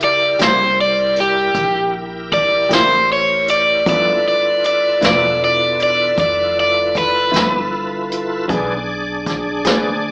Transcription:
Already playing: C#2 E4 G4 A#4
0.00 D5, closed hi-hat
0.39 C2 C#3 A#3 E4 G4, snare, closed hi-hat
0.44 C5
0.81 D5
1.16 closed hi-hat
1.20 G4
1.55 A#1, kick, closed hi-hat
2.32 D5, kick, closed hi-hat
2.69 A1 C#3 A#3 E4 G4, snare, closed hi-hat
2.74 C5
3.12 C#5
3.48 D5, closed hi-hat
3.86 G1 G2 F3 B3 E4 F4 A4 B4 D5, kick, closed hi-hat
4.28 D5
4.64 D5, closed hi-hat
5.01 E1 G2 F3 B3 E4, snare, closed hi-hat
5.06 D5
5.44 D5
5.80 D5, closed hi-hat
6.18 F1 D5, kick, closed hi-hat
6.60 D5
6.95 B4, kick, closed hi-hat
7.32 G1 G2 F3 B3 E4, closed hi-hat
7.36 snare
8.12 closed hi-hat
8.48 B1 E3 B3 D4 G#4 D5, kick, closed hi-hat
9.26 kick, snare, closed hi-hat
9.64 D2 E3 B3 D4 G#4, snare, closed hi-hat

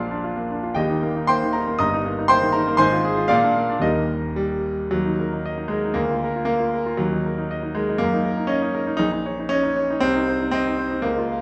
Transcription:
Already playing: A#1 A#2 D4 F4 D5 F5
0.11 D4
0.24 F4
0.37 A#3
0.51 D4
0.63 F4
0.75 D#1 D#2 G4 D#5 G5
0.90 D#4
1.03 A#3
1.16 D#4
1.27 A#3 C5 G5 C6
1.43 D#3
1.53 D#4 A#4 A#5
1.67 A#3
1.79 G1 G2 D#5 A#5 D#6
1.94 D#4
2.05 A#3
2.19 D#4
2.28 A#3 C5 G5 C6
2.42 D#3
2.52 D#4 A#4 A#5
2.67 A#3
2.77 G#1 G#2 C5 G#5 C6
2.92 F4
3.05 G#4
3.18 F4
3.28 A#2 F4 D5 F5
3.44 D4
3.56 A#3
3.69 D4
3.79 D#1 D#2 G3 A#3 D#4 A#4 D#5
4.36 G3
4.91 D#2 F#3
5.05 D#4
5.20 A#4
5.33 D#4
5.46 D#5
5.58 D#4
5.68 G#3 A#4
5.85 D#4
5.94 D2 A#3
6.10 F4
6.24 A#4
6.36 F4
6.45 A#3 F5
6.60 F4
6.74 A#4
6.86 F4
6.97 D#2 F#3
7.12 D#4
7.26 A#4
7.38 D#4
7.51 D#5
7.63 D#4
7.75 G#3 A#4
7.89 D#4
7.98 F#2 A#3
8.14 D#4
8.25 A#4
8.37 D#4
8.47 C#4 D#5
8.62 D#4
8.75 A#4
8.87 D#4
8.97 A#1 D#4
9.12 D#4
9.26 C#5
9.40 D#4
9.49 C#4 D#5
9.63 D#4
9.76 C#5
9.90 D#4
10.00 C2 C4
10.15 D#4
10.28 C5
10.40 D#4
10.51 C4 D#5
10.67 D#4
10.79 C5
10.91 D#4
11.02 C#2 A#3
11.18 F4
11.32 F5

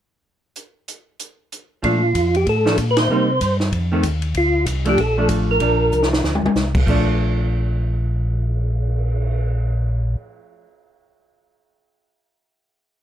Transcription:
0.56 closed hi-hat
0.88 closed hi-hat
1.20 closed hi-hat
1.52 closed hi-hat
1.82 A#2 F3 A3 D4 F4, kick, ride
2.15 F2, kick, hi-hat pedal, ride
2.34 G4, ride
2.46 A2 A4, kick, ride
2.65 F3 A3 D4, snare
2.78 A#2, kick, hi-hat pedal, ride
2.91 B4
2.97 C5, snare, ride
3.10 C3 G3 A#3 D#4
3.41 G2, kick, hi-hat pedal, ride
3.60 snare
3.72 F2, kick, ride
3.92 D#3 A3 C4
4.03 D#2, kick, hi-hat pedal, ride
4.22 ride
4.34 D2 F4, kick, ride
4.66 C2, kick, hi-hat pedal, ride
4.85 F3 A3 D4, ride
4.89 G4
4.97 A#1 A4, kick, ride
5.17 F3 A3 D4
5.29 A1, kick, hi-hat pedal, ride
5.51 A#4
5.60 A#1 F3 D4, kick, ride
5.92 C2, hi-hat pedal
6.03 snare
6.13 snare
6.24 D2, snare
6.35 mid tom
6.42 D2, mid tom
6.55 C2, snare, hi-hat pedal
6.75 kick, crash
6.86 A#1 F3 A3 D4, kick, crash
7.07 cymbal swell

